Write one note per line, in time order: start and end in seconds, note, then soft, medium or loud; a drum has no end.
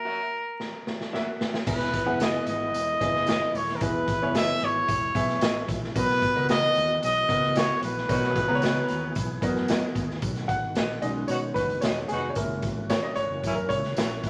0.00 0.30 A#3 medium
0.00 0.31 F#4 medium
0.00 1.11 A#4 loud
0.00 0.31 E5 medium
0.05 0.19 F#4 medium
0.05 0.19 A#4 medium
0.05 0.20 E5 medium
0.60 snare soft
0.87 snare medium
1.01 snare medium
1.12 1.52 A#3 medium
1.12 1.26 F#4 medium
1.12 1.52 F#4 medium
1.12 1.27 A#4 medium
1.12 1.52 E5 medium
1.12 1.27 E5 medium
1.12 snare medium
1.41 snare medium
1.54 snare medium
1.66 1.99 E1 loud
1.66 2.43 E3 medium
1.66 10.18 E3 medium
1.66 5.91 G#3 medium
1.66 1.96 B3 medium
1.66 3.80 B3 medium
1.66 1.96 E4 medium
1.66 5.92 E4 medium
1.66 1.96 G#4 medium
1.66 2.17 B4 loud
1.66 1.96 D#5 medium
1.66 kick loud
1.66 crash loud
1.66 tambourine medium
1.81 snare soft
1.81 closed hi-hat soft
1.94 kick medium
1.94 closed hi-hat medium
1.94 tambourine soft
2.06 2.39 F#1 medium
2.06 2.75 B3 medium
2.06 2.75 E4 medium
2.06 2.75 G#4 medium
2.06 2.75 F#5 medium
2.20 2.34 E4 medium
2.20 2.35 G#4 medium
2.20 2.46 D#5 medium
2.20 2.35 D#5 medium
2.20 snare loud
2.20 closed hi-hat medium
2.20 tambourine medium
2.47 2.73 G#1 medium
2.47 3.58 D#5 loud
2.47 closed hi-hat medium
2.47 tambourine medium
2.73 2.95 E1 medium
2.73 closed hi-hat medium
2.73 tambourine medium
3.01 3.43 F#1 medium
3.01 3.59 B3 medium
3.01 3.60 E4 medium
3.01 3.60 G#4 medium
3.01 3.60 D#5 medium
3.01 kick medium
3.01 closed hi-hat medium
3.01 tambourine medium
3.15 snare soft
3.27 3.41 E4 medium
3.27 3.41 G#4 medium
3.27 3.42 D#5 loud
3.27 snare loud
3.27 closed hi-hat medium
3.27 tambourine loud
3.54 3.75 D#1 medium
3.54 3.77 C#5 medium
3.54 open hi-hat medium
3.54 tambourine medium
3.69 snare soft
3.76 3.84 A#4 medium
3.81 4.13 E1 loud
3.81 4.58 E3 medium
3.81 4.11 B3 medium
3.81 4.11 E4 medium
3.81 4.11 G#4 medium
3.81 4.35 B4 loud
3.81 4.11 D#5 medium
3.81 kick loud
3.81 closed hi-hat loud
3.81 tambourine medium
4.08 kick loud
4.08 closed hi-hat medium
4.08 tambourine medium
4.21 4.53 F#1 loud
4.21 4.90 B3 medium
4.21 4.90 E4 medium
4.21 4.90 G#4 medium
4.21 4.90 C#5 medium
4.35 4.48 E4 medium
4.35 4.49 G#4 medium
4.35 4.49 D#5 medium
4.35 4.66 E5 loud
4.35 snare loud
4.35 closed hi-hat medium
4.35 tambourine medium
4.60 4.83 G#1 medium
4.60 closed hi-hat medium
4.60 tambourine medium
4.65 5.70 C#5 loud
4.88 5.09 E1 medium
4.88 kick medium
4.88 closed hi-hat medium
4.88 tambourine medium
5.15 5.36 B1 medium
5.15 5.73 B3 medium
5.15 5.73 E4 medium
5.15 5.73 G#4 medium
5.15 5.74 E5 medium
5.15 kick loud
5.15 closed hi-hat medium
5.15 tambourine medium
5.29 snare soft
5.29 closed hi-hat soft
5.41 5.63 A1 medium
5.41 5.55 E4 medium
5.41 5.56 G#4 medium
5.41 5.56 D#5 medium
5.41 snare loud
5.41 closed hi-hat loud
5.41 tambourine loud
5.68 5.90 A#1 medium
5.68 kick medium
5.68 closed hi-hat medium
5.68 tambourine medium
5.84 snare soft
5.94 6.27 B1 loud
5.94 6.72 B2 medium
5.94 10.18 B3 medium
5.94 6.25 B3 medium
5.94 8.06 F#4 medium
5.94 6.25 F#4 medium
5.94 6.25 A#4 medium
5.94 6.46 B4 loud
5.94 6.25 D#5 medium
5.94 kick loud
5.94 closed hi-hat medium
5.94 tambourine medium
6.09 snare soft
6.09 closed hi-hat soft
6.22 kick loud
6.22 closed hi-hat medium
6.22 tambourine soft
6.36 6.67 C#2 medium
6.36 7.04 B3 medium
6.36 7.03 F#4 medium
6.36 7.04 A#4 medium
6.36 7.04 D#5 medium
6.49 6.63 F#4 medium
6.49 6.63 A#4 loud
6.49 6.99 D#5 loud
6.49 6.63 D#5 loud
6.49 snare loud
6.49 closed hi-hat medium
6.49 tambourine medium
6.75 6.97 D#2 medium
6.75 closed hi-hat medium
6.75 tambourine medium
7.03 7.24 B1 medium
7.03 7.59 D#5 loud
7.03 closed hi-hat medium
7.03 tambourine loud
7.28 7.71 C#2 loud
7.28 7.87 B3 medium
7.28 7.87 F#4 medium
7.28 7.87 A#4 medium
7.28 7.87 D#5 medium
7.28 kick medium
7.28 closed hi-hat medium
7.28 tambourine medium
7.44 snare soft
7.55 7.69 F#4 medium
7.55 7.69 A#4 medium
7.55 7.83 C#5 loud
7.55 7.70 D#5 medium
7.55 snare loud
7.55 closed hi-hat medium
7.55 tambourine loud
7.83 8.03 A#1 medium
7.83 9.66 B4 medium
7.83 closed hi-hat medium
7.83 tambourine medium
7.98 snare soft
8.08 8.41 B1 loud
8.08 8.85 B2 medium
8.08 8.47 B3 medium
8.08 8.38 B3 medium
8.08 8.47 D#4 medium
8.08 8.38 F#4 medium
8.08 8.47 F#4 loud
8.08 10.21 G#4 medium
8.08 8.38 A#4 medium
8.08 8.38 C#5 medium
8.08 kick loud
8.08 closed hi-hat medium
8.08 tambourine medium
8.23 snare soft
8.36 kick loud
8.36 closed hi-hat medium
8.36 tambourine medium
8.48 8.81 C#2 loud
8.48 9.17 B3 loud
8.48 9.17 F#4 medium
8.48 8.55 B4 medium
8.48 9.17 A#5 medium
8.55 9.20 C#5 loud
8.62 8.76 F#4 medium
8.62 8.76 A#4 loud
8.62 8.77 D#5 medium
8.62 snare loud
8.62 closed hi-hat medium
8.62 tambourine loud
8.88 9.11 D#2 medium
8.88 closed hi-hat medium
8.88 tambourine medium
9.15 9.37 B1 medium
9.15 kick medium
9.15 closed hi-hat medium
9.15 tambourine medium
9.42 9.84 F#2 medium
9.42 10.01 B3 loud
9.42 10.01 F#4 medium
9.42 10.01 A#4 medium
9.42 10.01 D#5 loud
9.42 kick medium
9.42 closed hi-hat medium
9.42 tambourine medium
9.56 snare soft
9.68 9.83 F#4 medium
9.68 9.83 A#4 medium
9.68 9.83 D#5 medium
9.68 snare loud
9.68 closed hi-hat medium
9.68 tambourine loud
9.95 10.17 D#2 medium
9.95 kick medium
9.95 closed hi-hat medium
9.95 tambourine medium
10.10 snare soft
10.22 10.54 B1 loud
10.22 12.35 D#3 medium
10.22 12.36 G#3 medium
10.22 12.35 B3 medium
10.22 14.30 F#4 medium
10.22 kick loud
10.22 closed hi-hat medium
10.22 tambourine medium
10.36 snare soft
10.36 closed hi-hat soft
10.48 11.04 F#5 medium
10.48 kick medium
10.48 closed hi-hat medium
10.48 tambourine soft
10.63 10.73 G#1 loud
10.75 10.97 A#1 medium
10.75 10.89 F#4 medium
10.75 10.90 G#4 medium
10.75 10.90 D#5 medium
10.75 snare loud
10.75 closed hi-hat medium
10.75 tambourine medium
11.02 11.24 B1 medium
11.02 11.79 G#3 medium
11.02 11.79 C#4 medium
11.02 11.79 D#4 medium
11.02 11.27 D#5 medium
11.02 closed hi-hat medium
11.02 tambourine soft
11.28 11.51 B2 medium
11.28 11.38 B3 medium
11.28 11.38 D#4 medium
11.28 11.38 F#4 loud
11.28 11.56 C#5 medium
11.28 closed hi-hat medium
11.28 tambourine medium
11.54 11.77 F#1 medium
11.54 11.68 B3 medium
11.54 11.68 D#4 medium
11.54 11.68 F#4 medium
11.54 11.80 B4 loud
11.54 kick medium
11.54 closed hi-hat medium
11.54 tambourine medium
11.70 closed hi-hat soft
11.81 12.04 E1 medium
11.81 11.95 B3 medium
11.81 11.95 D#4 medium
11.81 11.96 F#4 medium
11.81 11.95 F#4 medium
11.81 11.97 G#4 medium
11.81 12.07 C#5 medium
11.81 11.97 D#5 medium
11.81 snare loud
11.81 closed hi-hat medium
11.81 tambourine loud
12.08 12.31 F1 medium
12.08 12.28 B3 loud
12.08 12.28 D#4 loud
12.08 12.28 F#4 loud
12.08 12.30 G#4 medium
12.08 closed hi-hat medium
12.08 tambourine medium
12.29 12.36 C#5 medium
12.35 12.68 F#1 loud
12.35 14.30 E3 medium
12.35 14.30 G#3 medium
12.35 14.30 A#3 soft
12.35 14.30 A#3 medium
12.35 14.30 C#4 medium
12.35 14.30 E4 medium
12.35 12.61 A#4 medium
12.35 kick loud
12.35 closed hi-hat medium
12.35 tambourine medium
12.62 kick loud
12.62 closed hi-hat medium
12.62 tambourine soft
12.77 12.98 G#1 medium
12.90 13.04 F#4 medium
12.90 13.04 A#4 medium
12.90 13.04 C#5 loud
12.90 13.05 E5 loud
12.90 snare loud
12.90 closed hi-hat medium
12.90 tambourine medium
13.03 13.15 D#5 loud
13.15 13.27 G#1 medium
13.15 13.57 C#5 loud
13.15 closed hi-hat medium
13.15 tambourine medium
13.30 13.40 F#1 loud
13.43 13.72 F#2 medium
13.43 13.54 A#3 loud
13.43 13.53 C#4 loud
13.43 13.53 E4 loud
13.43 kick medium
13.43 closed hi-hat medium
13.43 tambourine medium
13.55 13.68 A#4 medium
13.69 13.91 C#2 medium
13.69 13.82 A#3 medium
13.69 13.82 C#4 medium
13.69 13.82 E4 medium
13.69 14.30 C#5 loud
13.69 kick medium
13.69 closed hi-hat medium
13.69 tambourine medium
13.84 snare soft
13.84 closed hi-hat soft
13.97 14.18 A#1 medium
13.97 14.09 A#3 medium
13.97 14.09 C#4 medium
13.97 14.09 E4 medium
13.97 14.11 F#4 medium
13.97 14.11 A#4 medium
13.97 14.11 E5 medium
13.97 snare loud
13.97 closed hi-hat medium
13.97 tambourine loud
14.23 14.30 G1 medium
14.23 14.30 A#3 medium
14.23 14.30 C#4 loud
14.23 14.30 E4 loud
14.23 kick medium
14.23 closed hi-hat medium
14.23 tambourine medium